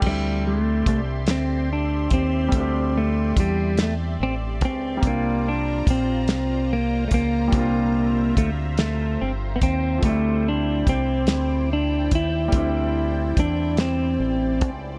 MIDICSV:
0, 0, Header, 1, 6, 480
1, 0, Start_track
1, 0, Key_signature, -1, "minor"
1, 0, Tempo, 833333
1, 16, Time_signature, 6, 3, 24, 8
1, 8632, End_track
2, 0, Start_track
2, 0, Title_t, "Analog synth pad"
2, 0, Program_c, 0, 89
2, 20, Note_on_c, 0, 74, 66
2, 21, Note_on_c, 0, 67, 78
2, 22, Note_on_c, 0, 84, 90
2, 24, Note_on_c, 0, 76, 75
2, 2875, Note_off_c, 0, 67, 0
2, 2876, Note_off_c, 0, 84, 0
2, 2877, Note_off_c, 0, 76, 0
2, 2896, Note_on_c, 0, 82, 77
2, 2899, Note_on_c, 0, 65, 81
2, 2899, Note_on_c, 0, 72, 75
2, 4315, Note_off_c, 0, 74, 0
2, 4340, Note_on_c, 0, 76, 65
2, 5753, Note_off_c, 0, 82, 0
2, 5755, Note_off_c, 0, 65, 0
2, 5764, Note_off_c, 0, 76, 0
2, 5776, Note_on_c, 0, 74, 69
2, 5777, Note_on_c, 0, 64, 80
2, 5778, Note_on_c, 0, 79, 84
2, 8632, Note_off_c, 0, 64, 0
2, 8632, Note_off_c, 0, 72, 0
2, 8632, Note_off_c, 0, 74, 0
2, 8632, Note_off_c, 0, 79, 0
2, 8632, End_track
3, 0, Start_track
3, 0, Title_t, "Clean electric guitar"
3, 0, Program_c, 1, 27
3, 38, Note_on_c, 1, 55, 81
3, 251, Note_off_c, 1, 55, 0
3, 273, Note_on_c, 1, 57, 74
3, 503, Note_off_c, 1, 57, 0
3, 510, Note_on_c, 1, 57, 77
3, 573, Note_off_c, 1, 57, 0
3, 754, Note_on_c, 1, 60, 89
3, 969, Note_off_c, 1, 60, 0
3, 995, Note_on_c, 1, 62, 84
3, 1228, Note_off_c, 1, 62, 0
3, 1230, Note_on_c, 1, 60, 99
3, 1714, Note_on_c, 1, 57, 80
3, 1717, Note_off_c, 1, 60, 0
3, 1952, Note_off_c, 1, 57, 0
3, 1958, Note_on_c, 1, 55, 79
3, 2194, Note_off_c, 1, 55, 0
3, 2203, Note_on_c, 1, 57, 84
3, 2265, Note_off_c, 1, 57, 0
3, 2437, Note_on_c, 1, 60, 86
3, 2499, Note_off_c, 1, 60, 0
3, 2679, Note_on_c, 1, 60, 92
3, 2914, Note_off_c, 1, 60, 0
3, 2920, Note_on_c, 1, 58, 99
3, 3155, Note_off_c, 1, 58, 0
3, 3159, Note_on_c, 1, 62, 94
3, 3394, Note_off_c, 1, 62, 0
3, 3401, Note_on_c, 1, 60, 90
3, 3876, Note_on_c, 1, 58, 99
3, 3883, Note_off_c, 1, 60, 0
3, 4072, Note_off_c, 1, 58, 0
3, 4077, Note_on_c, 1, 57, 70
3, 4107, Note_off_c, 1, 57, 0
3, 4113, Note_on_c, 1, 58, 103
3, 4825, Note_off_c, 1, 58, 0
3, 4827, Note_on_c, 1, 57, 84
3, 4891, Note_off_c, 1, 57, 0
3, 5071, Note_on_c, 1, 57, 103
3, 5308, Note_on_c, 1, 60, 95
3, 5311, Note_off_c, 1, 57, 0
3, 5360, Note_off_c, 1, 60, 0
3, 5505, Note_on_c, 1, 59, 68
3, 5541, Note_off_c, 1, 59, 0
3, 5547, Note_on_c, 1, 60, 88
3, 5765, Note_off_c, 1, 60, 0
3, 5791, Note_on_c, 1, 57, 91
3, 6031, Note_off_c, 1, 57, 0
3, 6039, Note_on_c, 1, 62, 100
3, 6273, Note_off_c, 1, 62, 0
3, 6275, Note_on_c, 1, 60, 99
3, 6754, Note_off_c, 1, 60, 0
3, 6757, Note_on_c, 1, 62, 106
3, 6993, Note_off_c, 1, 62, 0
3, 7000, Note_on_c, 1, 64, 118
3, 7714, Note_off_c, 1, 64, 0
3, 7717, Note_on_c, 1, 62, 97
3, 7950, Note_off_c, 1, 62, 0
3, 7952, Note_on_c, 1, 60, 106
3, 8461, Note_off_c, 1, 60, 0
3, 8632, End_track
4, 0, Start_track
4, 0, Title_t, "Grand piano"
4, 0, Program_c, 2, 0
4, 0, Control_c, 2, 64, 127
4, 0, Note_on_c, 2, 55, 67
4, 2, Note_on_c, 2, 57, 61
4, 17, Note_on_c, 2, 60, 63
4, 23, Control_c, 2, 64, 0
4, 34, Note_on_c, 2, 62, 61
4, 49, Note_on_c, 2, 64, 78
4, 121, Control_c, 2, 64, 127
4, 1417, Note_off_c, 2, 55, 0
4, 1426, Note_off_c, 2, 57, 0
4, 1430, Note_on_c, 2, 55, 72
4, 1434, Note_off_c, 2, 60, 0
4, 1442, Note_off_c, 2, 62, 0
4, 1447, Note_on_c, 2, 57, 62
4, 1450, Note_off_c, 2, 64, 0
4, 1465, Note_on_c, 2, 60, 61
4, 1479, Note_on_c, 2, 62, 64
4, 1497, Note_on_c, 2, 67, 83
4, 2854, Note_off_c, 2, 55, 0
4, 2863, Note_on_c, 2, 55, 67
4, 2869, Note_off_c, 2, 57, 0
4, 2878, Note_off_c, 2, 60, 0
4, 2879, Note_on_c, 2, 58, 66
4, 2885, Note_off_c, 2, 62, 0
4, 2893, Note_off_c, 2, 67, 0
4, 2895, Note_on_c, 2, 60, 67
4, 2902, Control_c, 2, 64, 0
4, 2911, Note_on_c, 2, 62, 68
4, 2928, Note_on_c, 2, 65, 72
4, 3013, Control_c, 2, 64, 127
4, 4297, Note_off_c, 2, 55, 0
4, 4305, Note_off_c, 2, 58, 0
4, 4307, Note_on_c, 2, 55, 64
4, 4313, Note_off_c, 2, 60, 0
4, 4321, Note_off_c, 2, 62, 0
4, 4324, Note_on_c, 2, 46, 67
4, 4329, Note_off_c, 2, 65, 0
4, 4342, Note_on_c, 2, 60, 64
4, 4357, Note_on_c, 2, 62, 66
4, 4372, Note_on_c, 2, 65, 81
4, 5739, Note_off_c, 2, 55, 0
4, 5747, Note_off_c, 2, 46, 0
4, 5748, Note_on_c, 2, 53, 51
4, 5756, Note_off_c, 2, 60, 0
4, 5763, Note_off_c, 2, 62, 0
4, 5764, Note_on_c, 2, 57, 61
4, 5771, Note_off_c, 2, 65, 0
4, 5781, Note_on_c, 2, 60, 65
4, 5784, Control_c, 2, 64, 0
4, 5785, Note_on_c, 2, 55, 66
4, 5798, Note_on_c, 2, 62, 62
4, 5800, Note_off_c, 2, 53, 0
4, 5813, Note_on_c, 2, 64, 75
4, 5872, Control_c, 2, 64, 127
4, 7180, Note_off_c, 2, 55, 0
4, 7187, Note_off_c, 2, 57, 0
4, 7189, Note_on_c, 2, 55, 67
4, 7196, Note_off_c, 2, 60, 0
4, 7204, Note_off_c, 2, 62, 0
4, 7204, Note_on_c, 2, 57, 63
4, 7212, Note_off_c, 2, 64, 0
4, 7220, Note_on_c, 2, 60, 66
4, 7236, Note_on_c, 2, 62, 67
4, 7254, Note_on_c, 2, 64, 73
4, 8620, Note_off_c, 2, 55, 0
4, 8627, Note_off_c, 2, 57, 0
4, 8632, Note_off_c, 2, 60, 0
4, 8632, Note_off_c, 2, 62, 0
4, 8632, Note_off_c, 2, 64, 0
4, 8632, End_track
5, 0, Start_track
5, 0, Title_t, "Fingered electric bass"
5, 0, Program_c, 3, 33
5, 16, Note_on_c, 3, 38, 103
5, 473, Note_off_c, 3, 38, 0
5, 500, Note_on_c, 3, 36, 99
5, 736, Note_off_c, 3, 36, 0
5, 736, Note_on_c, 3, 38, 96
5, 1193, Note_off_c, 3, 38, 0
5, 1219, Note_on_c, 3, 39, 93
5, 1435, Note_off_c, 3, 39, 0
5, 1456, Note_on_c, 3, 38, 102
5, 1913, Note_off_c, 3, 38, 0
5, 1941, Note_on_c, 3, 40, 90
5, 2396, Note_off_c, 3, 40, 0
5, 2419, Note_on_c, 3, 33, 93
5, 2660, Note_off_c, 3, 33, 0
5, 2660, Note_on_c, 3, 37, 85
5, 2875, Note_off_c, 3, 37, 0
5, 2898, Note_on_c, 3, 36, 101
5, 3354, Note_off_c, 3, 36, 0
5, 3384, Note_on_c, 3, 34, 93
5, 3620, Note_off_c, 3, 34, 0
5, 3620, Note_on_c, 3, 36, 88
5, 4075, Note_off_c, 3, 36, 0
5, 4101, Note_on_c, 3, 37, 84
5, 4316, Note_off_c, 3, 37, 0
5, 4336, Note_on_c, 3, 36, 98
5, 4793, Note_off_c, 3, 36, 0
5, 4823, Note_on_c, 3, 38, 101
5, 5277, Note_off_c, 3, 38, 0
5, 5309, Note_on_c, 3, 31, 86
5, 5519, Note_off_c, 3, 31, 0
5, 5542, Note_on_c, 3, 39, 84
5, 5756, Note_off_c, 3, 39, 0
5, 5778, Note_on_c, 3, 38, 95
5, 6234, Note_off_c, 3, 38, 0
5, 6265, Note_on_c, 3, 36, 97
5, 6503, Note_off_c, 3, 36, 0
5, 6503, Note_on_c, 3, 38, 96
5, 6957, Note_off_c, 3, 38, 0
5, 6984, Note_on_c, 3, 39, 95
5, 7197, Note_off_c, 3, 39, 0
5, 7217, Note_on_c, 3, 38, 105
5, 7674, Note_off_c, 3, 38, 0
5, 7704, Note_on_c, 3, 40, 95
5, 8157, Note_off_c, 3, 40, 0
5, 8178, Note_on_c, 3, 33, 90
5, 8420, Note_off_c, 3, 33, 0
5, 8420, Note_on_c, 3, 37, 88
5, 8632, Note_off_c, 3, 37, 0
5, 8632, End_track
6, 0, Start_track
6, 0, Title_t, "Drums"
6, 11, Note_on_c, 9, 49, 94
6, 13, Note_on_c, 9, 36, 102
6, 68, Note_off_c, 9, 49, 0
6, 70, Note_off_c, 9, 36, 0
6, 497, Note_on_c, 9, 36, 91
6, 499, Note_on_c, 9, 42, 65
6, 555, Note_off_c, 9, 36, 0
6, 557, Note_off_c, 9, 42, 0
6, 729, Note_on_c, 9, 42, 70
6, 735, Note_on_c, 9, 38, 104
6, 787, Note_off_c, 9, 42, 0
6, 793, Note_off_c, 9, 38, 0
6, 1212, Note_on_c, 9, 42, 70
6, 1217, Note_on_c, 9, 36, 89
6, 1270, Note_off_c, 9, 42, 0
6, 1274, Note_off_c, 9, 36, 0
6, 1452, Note_on_c, 9, 42, 79
6, 1453, Note_on_c, 9, 36, 106
6, 1510, Note_off_c, 9, 42, 0
6, 1511, Note_off_c, 9, 36, 0
6, 1939, Note_on_c, 9, 36, 93
6, 1939, Note_on_c, 9, 42, 69
6, 1996, Note_off_c, 9, 36, 0
6, 1997, Note_off_c, 9, 42, 0
6, 2174, Note_on_c, 9, 42, 67
6, 2181, Note_on_c, 9, 38, 117
6, 2232, Note_off_c, 9, 42, 0
6, 2238, Note_off_c, 9, 38, 0
6, 2657, Note_on_c, 9, 42, 72
6, 2658, Note_on_c, 9, 36, 83
6, 2714, Note_off_c, 9, 42, 0
6, 2716, Note_off_c, 9, 36, 0
6, 2895, Note_on_c, 9, 36, 115
6, 2897, Note_on_c, 9, 42, 82
6, 2953, Note_off_c, 9, 36, 0
6, 2954, Note_off_c, 9, 42, 0
6, 3380, Note_on_c, 9, 36, 97
6, 3384, Note_on_c, 9, 42, 67
6, 3438, Note_off_c, 9, 36, 0
6, 3441, Note_off_c, 9, 42, 0
6, 3615, Note_on_c, 9, 42, 77
6, 3622, Note_on_c, 9, 38, 116
6, 3673, Note_off_c, 9, 42, 0
6, 3679, Note_off_c, 9, 38, 0
6, 4094, Note_on_c, 9, 42, 66
6, 4098, Note_on_c, 9, 36, 93
6, 4152, Note_off_c, 9, 42, 0
6, 4156, Note_off_c, 9, 36, 0
6, 4334, Note_on_c, 9, 42, 76
6, 4335, Note_on_c, 9, 36, 106
6, 4392, Note_off_c, 9, 36, 0
6, 4392, Note_off_c, 9, 42, 0
6, 4820, Note_on_c, 9, 36, 95
6, 4822, Note_on_c, 9, 42, 65
6, 4878, Note_off_c, 9, 36, 0
6, 4880, Note_off_c, 9, 42, 0
6, 5055, Note_on_c, 9, 42, 71
6, 5061, Note_on_c, 9, 38, 113
6, 5112, Note_off_c, 9, 42, 0
6, 5119, Note_off_c, 9, 38, 0
6, 5538, Note_on_c, 9, 42, 69
6, 5539, Note_on_c, 9, 36, 86
6, 5596, Note_off_c, 9, 42, 0
6, 5597, Note_off_c, 9, 36, 0
6, 5775, Note_on_c, 9, 36, 104
6, 5775, Note_on_c, 9, 42, 88
6, 5833, Note_off_c, 9, 36, 0
6, 5833, Note_off_c, 9, 42, 0
6, 6260, Note_on_c, 9, 36, 92
6, 6262, Note_on_c, 9, 42, 61
6, 6318, Note_off_c, 9, 36, 0
6, 6320, Note_off_c, 9, 42, 0
6, 6490, Note_on_c, 9, 42, 75
6, 6497, Note_on_c, 9, 38, 109
6, 6548, Note_off_c, 9, 42, 0
6, 6554, Note_off_c, 9, 38, 0
6, 6977, Note_on_c, 9, 42, 68
6, 6979, Note_on_c, 9, 36, 93
6, 7035, Note_off_c, 9, 42, 0
6, 7037, Note_off_c, 9, 36, 0
6, 7213, Note_on_c, 9, 42, 85
6, 7215, Note_on_c, 9, 36, 107
6, 7271, Note_off_c, 9, 42, 0
6, 7273, Note_off_c, 9, 36, 0
6, 7701, Note_on_c, 9, 36, 96
6, 7702, Note_on_c, 9, 42, 67
6, 7758, Note_off_c, 9, 36, 0
6, 7760, Note_off_c, 9, 42, 0
6, 7933, Note_on_c, 9, 42, 70
6, 7940, Note_on_c, 9, 38, 120
6, 7991, Note_off_c, 9, 42, 0
6, 7997, Note_off_c, 9, 38, 0
6, 8416, Note_on_c, 9, 42, 65
6, 8418, Note_on_c, 9, 36, 93
6, 8474, Note_off_c, 9, 42, 0
6, 8476, Note_off_c, 9, 36, 0
6, 8632, End_track
0, 0, End_of_file